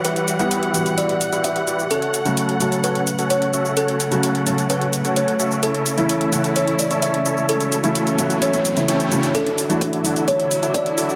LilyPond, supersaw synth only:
\new Staff \with { instrumentName = "Supersaw synth" } { \time 4/4 \key d \major \tempo 4 = 129 <e' fis' g' b' e''>8 r16 <e' fis' g' b' e''>8. <e' fis' g' b' fis''>8 <e' fis' g' b' e''>8 r16 <e' fis' g' b' e''>8 r16 <e' fis' g' b' d''>8 | <cis' fis' a' cis'' fis''>8 r16 <cis' fis' a' cis'' fis''>8. <cis' fis' a' cis'' a''>8 <cis' fis' a' cis'' fis''>8 r16 <cis' fis' a' cis'' fis''>8 r16 <cis' fis' a' cis'' e''>8 | <cis' fis' a' cis'' fis''>8 r16 <cis' fis' a' cis'' fis''>8. <cis' fis' a' cis'' a''>8 <cis' fis' a' cis'' fis''>8 r16 <cis' fis' a' cis'' fis''>8 r16 <cis' fis' a' cis'' e''>8 | <cis' e' a' cis'' e''>8 r16 <cis' e' a' cis'' e''>8. <cis' e' a' cis'' fis''>8 <cis' e' a' cis'' e''>8 r16 <cis' e' a' cis'' e''>8 r16 <cis' e' a' cis'' e''>8 |
<cis' e' a' cis'' e''>8 r16 <cis' e' a' cis'' e''>8. <cis' e' a' cis'' fis''>8 <cis' e' a' cis'' e''>8 r8 <cis' e' a' cis'' g''>4 | <e' fis' a' d'' e''>8 r16 <e' fis' a' d'' e''>8. <e' fis' a' d'' fis''>8 <e' fis' a' d'' e''>8 r16 <e' fis' a' d'' e''>8 r16 <e' fis' a' d'' e''>8 | }